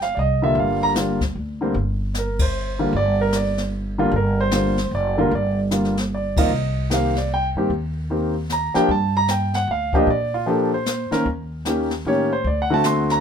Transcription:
0.00 0.12 G1 medium
0.00 0.16 F5 medium
0.00 snare soft
0.15 0.53 C2 medium
0.15 0.17 D5 soft
0.19 0.42 D#5 medium
0.42 0.93 D3 medium
0.42 0.93 G3 medium
0.42 0.93 A#3 medium
0.42 0.94 F4 medium
0.42 0.56 E5 medium
0.55 1.31 G1 medium
0.55 brush sweep soft
0.55 kick soft
0.59 0.82 F5 medium
0.83 0.91 A#5 loud
0.95 1.19 D3 medium
0.95 1.18 G3 soft
0.95 1.19 A#3 medium
0.95 1.19 F4 medium
0.95 snare medium
0.95 hi-hat pedal medium
1.21 kick soft
1.21 snare soft
1.35 1.72 D2 medium
1.61 1.73 D3 medium
1.61 1.74 G3 medium
1.61 1.74 A#3 medium
1.61 1.74 C4 medium
1.74 2.90 G1 medium
1.74 brush sweep soft
1.74 kick soft
2.14 snare medium
2.14 hi-hat pedal soft
2.19 2.41 A#4 medium
2.39 2.91 C5 medium
2.39 kick medium
2.39 ride medium
2.79 2.92 D3 medium
2.79 2.92 G3 medium
2.79 2.92 A#3 medium
2.79 2.93 F4 medium
2.93 4.08 G1 medium
2.93 3.20 D5 medium
2.93 brush sweep soft
2.93 kick soft
3.21 3.34 A#4 medium
3.32 3.59 D5 medium
3.32 snare medium
3.32 hi-hat pedal medium
3.58 snare soft
3.98 4.11 D3 medium
3.98 4.11 G3 medium
3.98 4.12 A#3 medium
3.98 4.12 F4 medium
4.11 4.87 G1 medium
4.11 4.14 A4 medium
4.11 brush sweep soft
4.11 kick soft
4.16 4.39 A#4 medium
4.41 4.89 C5 medium
4.51 4.75 D3 soft
4.51 4.75 G3 soft
4.51 4.76 A#3 soft
4.51 4.76 F4 medium
4.51 snare medium
4.51 hi-hat pedal soft
4.77 snare soft
4.91 5.28 F#1 medium
4.91 5.18 D5 medium
5.15 5.30 D3 medium
5.15 5.31 G3 medium
5.15 5.31 A#3 medium
5.15 5.31 F4 medium
5.15 5.17 A4 soft
5.21 5.33 A#4 medium
5.31 6.46 G1 medium
5.31 5.58 D5 medium
5.31 brush sweep soft
5.31 kick soft
5.71 5.94 D3 soft
5.71 5.94 G3 soft
5.71 5.94 A#3 medium
5.71 5.95 F4 medium
5.71 snare medium
5.71 hi-hat pedal soft
5.85 snare soft
5.97 snare soft
6.14 6.37 D5 medium
6.37 6.50 D#3 medium
6.37 6.50 A#3 medium
6.37 6.50 C4 medium
6.37 6.50 F4 medium
6.37 6.87 D#5 medium
6.37 kick medium
6.37 ride medium
6.50 7.51 C2 medium
6.50 brush sweep soft
6.90 7.13 D#3 soft
6.90 7.13 A#3 medium
6.90 7.14 C4 soft
6.90 7.14 G4 medium
6.90 7.17 F5 medium
6.90 snare medium
6.90 hi-hat pedal medium
7.16 7.31 D5 medium
7.16 snare soft
7.34 7.48 G5 medium
7.55 7.68 G2 medium
7.55 7.69 D#3 medium
7.55 7.69 A#3 medium
7.55 7.69 C4 medium
7.55 7.69 G4 medium
7.70 8.71 D#2 medium
7.70 brush sweep soft
7.70 kick soft
8.10 8.33 D#3 medium
8.10 8.33 A#3 soft
8.10 8.33 C4 medium
8.10 8.33 G4 soft
8.50 8.75 A#5 medium
8.50 snare medium
8.50 hi-hat pedal medium
8.74 8.87 F3 medium
8.74 8.87 A#3 medium
8.74 8.87 D4 medium
8.74 8.87 G4 medium
8.74 8.89 G5 medium
8.74 muted upright bass stroke soft
8.74 snare soft
8.89 9.64 G2 medium
8.89 9.15 A5 medium
8.89 brush sweep soft
8.89 kick soft
9.17 9.29 A#5 loud
9.28 9.54 G5 medium
9.28 snare medium
9.28 hi-hat pedal medium
9.54 9.68 F#5 medium
9.54 snare soft
9.67 10.04 D2 medium
9.67 9.94 F5 medium
9.93 10.06 F3 medium
9.93 10.06 A#3 medium
9.93 10.07 D4 medium
9.93 10.07 G4 medium
9.93 10.08 D#5 medium
9.93 kick medium
10.07 11.08 A#2 medium
10.07 10.34 D5 medium
10.07 brush sweep soft
10.07 kick soft
10.34 10.47 F4 medium
10.46 10.70 F3 medium
10.46 10.70 A#3 medium
10.46 10.70 D4 medium
10.46 10.70 G4 medium
10.46 10.73 A4 medium
10.74 11.23 C5 medium
10.86 snare medium
10.86 hi-hat pedal medium
11.11 11.24 D#3 medium
11.11 11.25 A#3 medium
11.11 11.25 C#4 medium
11.11 11.25 A#4 medium
11.11 muted upright bass stroke soft
11.11 snare soft
11.26 12.01 D#2 medium
11.26 brush sweep soft
11.26 kick soft
11.65 11.89 D#3 medium
11.65 11.89 A#3 medium
11.65 11.89 C#4 medium
11.65 11.89 G4 medium
11.65 snare medium
11.65 hi-hat pedal soft
11.91 snare soft
12.05 12.42 A2 medium
12.05 12.29 D#3 medium
12.05 12.29 A#3 medium
12.05 12.29 C#4 medium
12.05 12.29 G4 medium
12.05 12.31 C#5 medium
12.33 12.46 C5 medium
12.44 13.20 D2 medium
12.44 12.59 D5 medium
12.44 brush sweep soft
12.44 kick soft
12.62 12.73 F#5 medium
12.70 13.20 D3 medium
12.70 13.20 A3 medium
12.70 13.20 C4 medium
12.70 13.20 F#4 medium
12.70 12.85 A5 medium
12.84 13.10 C6 medium
12.84 snare medium
12.84 hi-hat pedal medium
13.10 13.20 A#5 medium
13.10 snare soft

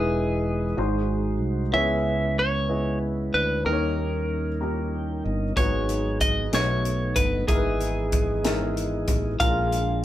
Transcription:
0.00 0.74 E1 medium
0.00 0.73 E3 medium
0.00 0.76 E3 soft
0.00 0.64 G#3 medium
0.00 0.75 G#3 medium
0.00 0.65 D#4 medium
0.00 0.65 E4 medium
0.00 1.37 G#4 medium
0.00 0.68 B4 medium
0.00 0.76 B4 medium
0.00 0.76 D#5 soft
0.76 1.41 G#1 medium
0.76 1.69 G#2 medium
0.76 1.72 G#3 medium
0.76 1.60 G#3 medium
0.76 1.73 D#4 medium
0.76 1.60 D#4 medium
0.76 1.73 F#4 medium
0.76 1.60 F#4 medium
0.76 1.73 C5 medium
0.76 1.61 C5 medium
1.41 1.71 C2 medium
1.72 3.29 C#2 medium
1.72 2.65 C#3 medium
1.72 3.62 G#3 medium
1.72 2.56 B3 medium
1.72 3.62 C#4 soft
1.72 2.56 E4 medium
1.72 3.61 E4 soft
1.72 2.56 G#4 medium
1.72 1.80 A#4 soft
1.72 2.56 C#5 medium
1.72 2.39 E5 medium
1.80 3.65 B4 medium
2.39 2.98 C#5 medium
2.68 3.52 B3 medium
2.68 3.52 E4 soft
2.68 3.52 G#4 soft
2.68 3.52 D#5 medium
3.34 3.63 D2 medium
3.34 3.63 B4 medium
3.65 5.21 D#2 medium
3.65 4.57 D#3 medium
3.65 5.53 G3 soft
3.65 4.48 A#3 medium
3.65 5.53 C#4 soft
3.65 5.53 D#4 soft
3.65 4.48 D#4 medium
3.65 4.48 G4 medium
3.65 5.53 A#4 medium
3.65 5.21 A#4 medium
3.65 3.72 B4 medium
3.73 4.52 C#5 medium
4.61 5.44 A#3 medium
4.61 5.44 D#4 medium
4.61 5.44 G4 medium
4.61 5.44 A#4 medium
4.95 5.24 G5 medium
5.24 5.54 G1 medium
5.24 5.54 D#5 medium
5.56 6.49 G#1 medium
5.56 6.49 G#2 medium
5.56 6.49 F#3 soft
5.56 6.40 G#3 medium
5.56 6.50 B3 soft
5.56 6.50 D#4 soft
5.56 6.40 D#4 medium
5.56 6.41 F#4 medium
5.56 6.53 G#4 medium
5.56 6.41 B4 medium
5.56 6.21 C#5 medium
5.56 kick medium
5.56 closed hi-hat medium
5.89 closed hi-hat soft
6.21 6.54 D#5 medium
6.21 kick medium
6.21 closed hi-hat medium
6.51 7.13 B1 medium
6.51 7.45 B2 soft
6.51 7.48 F#3 soft
6.51 7.36 A3 medium
6.51 7.47 B3 soft
6.51 7.48 D#4 soft
6.51 7.36 D#4 soft
6.51 7.36 F#4 soft
6.51 7.48 A4 medium
6.51 7.36 B4 medium
6.51 7.19 C#5 medium
6.51 snare medium
6.51 closed hi-hat medium
6.85 closed hi-hat soft
7.16 7.46 G1 medium
7.16 7.48 B4 medium
7.16 kick medium
7.16 closed hi-hat medium
7.47 9.05 G#1 medium
7.47 8.41 G#2 medium
7.47 9.36 E3 medium
7.47 8.31 G#3 medium
7.47 9.36 B3 soft
7.47 8.32 D#4 medium
7.47 8.32 E4 medium
7.47 9.36 G#4 medium
7.47 9.04 G#4 medium
7.47 7.56 A#4 medium
7.47 9.36 D#5 medium
7.47 kick loud
7.47 closed hi-hat medium
7.56 8.35 B4 medium
7.81 closed hi-hat soft
8.12 kick medium
8.12 closed hi-hat medium
8.44 9.27 G#3 medium
8.44 9.27 D#4 medium
8.44 9.28 E4 medium
8.44 9.28 A#4 medium
8.44 snare medium
8.44 closed hi-hat medium
8.77 closed hi-hat soft
9.08 9.38 A1 medium
9.08 kick medium
9.08 closed hi-hat medium
9.40 10.05 A#1 medium
9.40 10.05 A#2 medium
9.40 10.05 F3 medium
9.40 10.05 G#3 medium
9.40 10.05 A#3 soft
9.40 10.05 D4 medium
9.40 10.05 D4 soft
9.40 10.05 F4 medium
9.40 9.48 G4 soft
9.40 10.05 A#4 medium
9.40 10.04 F5 medium
9.40 kick medium
9.40 closed hi-hat medium
9.48 10.05 G#4 medium
9.72 closed hi-hat soft

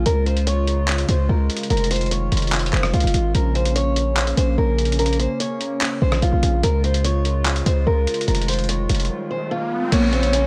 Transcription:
0.06 1.05 C#2 loud
0.06 1.69 C#3 medium
0.06 3.31 G#3 medium
0.06 1.69 F4 loud
0.06 0.25 A#4 loud
0.06 closed hi-hat medium
0.26 0.46 C5 medium
0.26 closed hi-hat soft
0.37 closed hi-hat medium
0.47 1.05 C#5 medium
0.47 closed hi-hat medium
0.67 closed hi-hat medium
0.88 clap loud
0.88 closed hi-hat medium
0.98 closed hi-hat medium
1.09 1.28 C#2 loud
1.09 1.28 C5 medium
1.09 closed hi-hat medium
1.29 1.49 C#2 loud
1.29 1.68 A#4 medium
1.50 closed hi-hat medium
1.57 closed hi-hat medium
1.63 closed hi-hat medium
1.70 2.29 F1 loud
1.70 3.33 D#3 medium
1.70 3.33 F4 loud
1.70 1.89 A#4 loud
1.70 closed hi-hat medium
1.77 closed hi-hat medium
1.84 closed hi-hat medium
1.91 2.10 C5 medium
1.91 closed hi-hat medium
1.91 open hi-hat medium
1.96 closed hi-hat medium
2.01 closed hi-hat soft
2.06 closed hi-hat soft
2.11 2.69 C#5 medium
2.11 closed hi-hat medium
2.32 2.71 F1 loud
2.32 closed hi-hat medium
2.37 closed hi-hat medium
2.42 closed hi-hat medium
2.47 closed hi-hat soft
2.52 clap loud
2.52 closed hi-hat medium
2.59 closed hi-hat medium
2.66 closed hi-hat medium
2.73 2.93 F1 loud
2.73 2.92 C5 medium
2.73 clap medium
2.83 cross-stick loud
2.94 3.03 C2 loud
2.94 3.32 F4 loud
2.94 closed hi-hat soft
3.00 3.13 F1 loud
3.00 closed hi-hat medium
3.07 closed hi-hat medium
3.14 3.34 G#1 loud
3.14 closed hi-hat medium
3.35 4.33 A#1 loud
3.35 6.60 C#3 medium
3.35 6.60 A#3 medium
3.35 6.60 C#4 loud
3.35 3.54 A#4 loud
3.35 closed hi-hat medium
3.55 3.74 C5 medium
3.55 closed hi-hat soft
3.65 closed hi-hat medium
3.76 4.34 C#5 medium
3.76 closed hi-hat medium
3.96 closed hi-hat medium
4.17 clap loud
4.17 closed hi-hat medium
4.27 closed hi-hat medium
4.37 4.57 A#1 loud
4.37 4.57 C5 medium
4.37 closed hi-hat medium
4.58 5.27 A#1 loud
4.58 4.97 A#4 medium
4.78 closed hi-hat medium
4.85 closed hi-hat medium
4.92 closed hi-hat medium
4.99 5.18 A#4 loud
4.99 closed hi-hat medium
5.06 closed hi-hat medium
5.13 closed hi-hat medium
5.20 5.39 C5 medium
5.20 closed hi-hat medium
5.40 5.98 C#5 medium
5.40 closed hi-hat medium
5.61 closed hi-hat medium
5.81 clap loud
5.81 closed hi-hat medium
6.02 6.21 A#1 loud
6.02 6.21 C5 medium
6.12 cross-stick loud
6.22 6.32 A#1 loud
6.22 6.61 F4 medium
6.22 closed hi-hat medium
6.33 6.42 A#1 loud
6.43 6.63 A#1 loud
6.43 closed hi-hat medium
6.63 7.62 C#2 loud
6.63 8.26 C#3 medium
6.63 9.89 G#3 medium
6.63 9.89 F4 loud
6.63 6.83 A#4 medium
6.63 closed hi-hat medium
6.84 7.03 C5 medium
6.84 closed hi-hat soft
6.94 closed hi-hat medium
7.04 7.62 C#5 medium
7.04 closed hi-hat medium
7.25 closed hi-hat medium
7.46 clap loud
7.46 closed hi-hat medium
7.56 closed hi-hat medium
7.66 7.86 C#2 loud
7.66 7.85 C5 medium
7.66 closed hi-hat medium
7.87 8.06 C#2 loud
7.87 8.25 A#4 medium
8.07 closed hi-hat medium
8.14 closed hi-hat medium
8.21 closed hi-hat medium
8.28 8.87 F1 loud
8.28 9.91 D#3 medium
8.28 8.47 A#4 loud
8.28 closed hi-hat medium
8.28 riser medium
8.35 closed hi-hat medium
8.41 closed hi-hat medium
8.48 8.68 C5 medium
8.48 closed hi-hat medium
8.48 open hi-hat medium
8.53 closed hi-hat medium
8.59 closed hi-hat medium
8.64 closed hi-hat soft
8.69 9.27 C#5 medium
8.69 closed hi-hat medium
8.89 9.09 F1 loud
8.89 closed hi-hat medium
8.95 closed hi-hat medium
9.00 closed hi-hat medium
9.05 closed hi-hat soft
9.31 9.50 C5 medium
9.51 9.90 F4 loud
9.92 10.47 A#1 loud
9.92 10.47 C#3 medium
9.92 10.11 A#3 loud
9.92 10.47 A#3 medium
9.92 10.47 C#4 loud
9.92 10.47 C#5 loud
9.92 closed hi-hat medium
9.92 crash loud
10.13 10.32 C4 medium
10.13 closed hi-hat soft
10.23 closed hi-hat medium
10.33 10.47 C#4 medium
10.33 closed hi-hat medium

